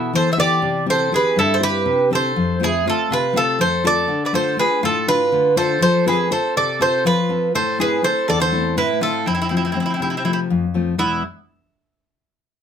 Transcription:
Already playing: nylon-string guitar B2 B3 E4 A4, mandolin B3, bouzouki E4
0.13 nylon-string guitar E3, mandolin A4, bouzouki C5
0.31 mandolin C5, bouzouki E5
0.37 nylon-string guitar B3 E4 A4, mandolin G4, bouzouki D5
0.62 nylon-string guitar C3
0.86 nylon-string guitar C4 E4 G4, bouzouki C5
0.90 mandolin A4
1.12 nylon-string guitar C4 E4 G4, mandolin G#4
1.16 bouzouki B4
1.36 nylon-string guitar G2, mandolin E4, bouzouki A4
1.54 mandolin A4, bouzouki C5
1.60 nylon-string guitar C4 E4 G4, bouzouki B4
1.64 mandolin G4
1.86 nylon-string guitar C3
2.10 nylon-string guitar C4 E4 G4, mandolin A4
2.15 bouzouki C5
2.36 nylon-string guitar F2
2.60 nylon-string guitar A3 C4 F4, mandolin E4
2.64 bouzouki G#4
2.85 nylon-string guitar A3 C4 F4, mandolin F4
2.90 bouzouki A4
3.10 nylon-string guitar C3, mandolin F4, bouzouki B4
3.33 nylon-string guitar A3 C4 F4, mandolin F4
3.37 bouzouki A4
3.59 nylon-string guitar F2, mandolin A4, bouzouki C5
3.84 nylon-string guitar A3 C4 F4, mandolin A4, bouzouki D5
4.08 nylon-string guitar D3
4.25 mandolin B4, bouzouki D5
4.33 nylon-string guitar A3 D4 F4, mandolin A4, bouzouki C5
4.57 nylon-string guitar A3 D4 F4, mandolin G#4, bouzouki B4
4.83 nylon-string guitar A2, mandolin F4, bouzouki A4
5.07 nylon-string guitar A3 D4 F4, mandolin F4, bouzouki B4
5.32 nylon-string guitar D3
5.56 nylon-string guitar A3 D4 F4, mandolin A4, bouzouki C5
5.81 nylon-string guitar F3, mandolin A4, bouzouki C5
6.06 nylon-string guitar C4 F4 A4, mandolin G#4, bouzouki B4
6.30 nylon-string guitar C4 F4 A4, mandolin A4, bouzouki C5
6.57 nylon-string guitar C3, mandolin A4, bouzouki D5
6.80 nylon-string guitar C4 F4 A4, mandolin A4, bouzouki C5
7.05 nylon-string guitar F3, mandolin F4, bouzouki B4
7.29 nylon-string guitar C4 F4 A4
7.55 nylon-string guitar A2, mandolin A4, bouzouki C5
7.79 nylon-string guitar A3 C4 E4, mandolin G#4, bouzouki B4
8.03 nylon-string guitar A3 C4 E4, mandolin A4, bouzouki C5
8.28 nylon-string guitar E2, mandolin A4, bouzouki D5
8.40 mandolin A4, bouzouki C5
8.52 nylon-string guitar A3 C4 E4
8.77 nylon-string guitar A2, mandolin E4, bouzouki B4
9.01 nylon-string guitar A3 C4 E4, mandolin F4, bouzouki A4
9.26 nylon-string guitar F2, mandolin C4, bouzouki E4
9.35 mandolin C4, bouzouki E4
9.42 mandolin C4, bouzouki E4
9.49 nylon-string guitar F3 A3 C4, mandolin C4, bouzouki E4
9.57 mandolin C4, bouzouki E4
9.65 mandolin C4, bouzouki E4
9.72 nylon-string guitar F3 A3, mandolin C4, bouzouki E4
9.76 nylon-string guitar C4, bouzouki E4
9.83 mandolin C4, bouzouki E4
9.90 mandolin C4, bouzouki E4
9.96 nylon-string guitar C3, mandolin C4
10.02 mandolin C4, bouzouki E4
10.10 mandolin C4, bouzouki E4
10.17 mandolin C4, bouzouki E4
10.25 nylon-string guitar F3 A3 C4, mandolin C4, bouzouki E4
10.33 mandolin C4, bouzouki E4
10.50 nylon-string guitar F2
10.74 nylon-string guitar F3 A3 C4
10.98 nylon-string guitar E2 B2 E3 G#3 B3, mandolin B3, bouzouki E4

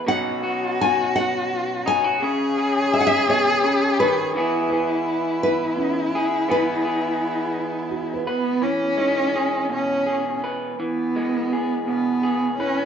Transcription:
Already playing: harmonium B4
0.04 clean electric guitar B2 D#4, harmonium F#3 C#4 D#4, cello F#4, nylon-string guitar F#5
0.08 clean electric guitar F#4
0.43 clean electric guitar F#4
0.81 nylon-string guitar G#5
1.16 nylon-string guitar F#5
1.86 clean electric guitar D#4, nylon-string guitar G#5
2.04 clean electric guitar F#4
2.21 clean electric guitar C#3 G#4, harmonium G#3 C#4 C#5 E5, cello G#4
2.58 clean electric guitar G#4
2.94 nylon-string guitar E5
3.00 nylon-string guitar F#5
3.07 nylon-string guitar E5
3.27 clean electric guitar B2, felt piano F#4, nylon-string guitar C#5
3.64 clean electric guitar C#3
4.00 clean electric guitar D#3, nylon-string guitar B4
4.34 clean electric guitar E3 B3, harmonium B3 B4, cello E4
4.38 clean electric guitar G#4
4.69 clean electric guitar G#4, felt piano B4
5.43 nylon-string guitar B4
5.77 felt piano C#4
6.15 clean electric guitar G#4
6.49 clean electric guitar E3 B3 G#4, nylon-string guitar B4
6.85 clean electric guitar G#4
7.90 felt piano F#4
8.14 felt piano B4
8.27 cello B3, clean electric guitar B4
8.62 clean electric guitar E3, cello C#4
8.97 clean electric guitar G#3, felt piano D#4
9.36 clean electric guitar G#4
9.70 clean electric guitar B2, cello C#4
10.06 clean electric guitar G#4
10.44 clean electric guitar B4
10.78 clean electric guitar E3, cello B3
11.16 clean electric guitar G#3
11.53 clean electric guitar G#4
11.86 clean electric guitar B2, cello B3
12.23 clean electric guitar G#4
12.58 cello C#4, felt piano E4, clean electric guitar B4

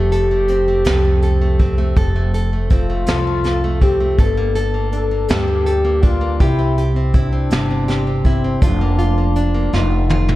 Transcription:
Already playing: upright bass F1, nylon-string guitar F2 A3 A4, french horn section G4
0.12 nylon-string guitar A4, closed hi-hat
0.31 nylon-string guitar A3
0.48 nylon-string guitar C4, closed hi-hat
0.68 nylon-string guitar A3
0.85 upright bass C2, nylon-string guitar F2 A4, snare, closed hi-hat
1.05 nylon-string guitar A3
1.22 nylon-string guitar A4, closed hi-hat
1.41 nylon-string guitar A3
1.59 nylon-string guitar C4, kick, closed hi-hat
1.78 nylon-string guitar A3
1.96 upright bass F1, nylon-string guitar F2 A4, kick, closed hi-hat
2.16 nylon-string guitar A3
2.34 nylon-string guitar A4, closed hi-hat
2.53 nylon-string guitar A3
2.70 nylon-string guitar C4, french horn section F4, kick, closed hi-hat
2.90 nylon-string guitar A3
3.06 upright bass C2, nylon-string guitar F2 A4, snare, closed hi-hat
3.27 nylon-string guitar A3
3.44 nylon-string guitar A4, snare, closed hi-hat
3.64 nylon-string guitar A3
3.81 nylon-string guitar C4, french horn section G4, kick, closed hi-hat
4.00 nylon-string guitar A3
4.18 upright bass G1, nylon-string guitar G2 A4, french horn section A4, kick, closed hi-hat
4.37 nylon-string guitar A#3
4.55 nylon-string guitar A4, closed hi-hat
4.74 nylon-string guitar A#3
4.92 nylon-string guitar D4, french horn section A4, closed hi-hat
5.11 nylon-string guitar A#3
5.29 upright bass D2, nylon-string guitar G2 A4, french horn section G4, snare, closed hi-hat
5.48 nylon-string guitar A#3
5.66 nylon-string guitar A4, closed hi-hat
5.85 nylon-string guitar A#3
6.03 nylon-string guitar D4, french horn section F4, kick, closed hi-hat
6.21 nylon-string guitar A#3
6.40 upright bass C2, nylon-string guitar C3 G4, french horn section E4, kick, closed hi-hat
6.59 nylon-string guitar C4
6.78 nylon-string guitar G4, closed hi-hat
6.96 nylon-string guitar C4
7.14 french horn section D4, nylon-string guitar E4, kick, closed hi-hat
7.33 nylon-string guitar C4
7.51 upright bass G1, nylon-string guitar C3 G4, snare, closed hi-hat
7.71 nylon-string guitar C4
7.88 nylon-string guitar G4, snare, closed hi-hat
8.07 nylon-string guitar C4
8.24 french horn section C4, nylon-string guitar E4, kick, closed hi-hat
8.44 nylon-string guitar C4
8.61 upright bass F1, nylon-string guitar F2 F4, french horn section D4, kick, closed hi-hat
8.81 nylon-string guitar A#3
8.99 nylon-string guitar F4, closed hi-hat
9.18 nylon-string guitar A#3
9.36 nylon-string guitar D4, closed hi-hat
9.54 nylon-string guitar A#3
9.73 upright bass F1, nylon-string guitar F2 F4, french horn section D#4, snare
9.91 nylon-string guitar A3
10.10 nylon-string guitar F4, high tom
10.28 nylon-string guitar A3, mid tom

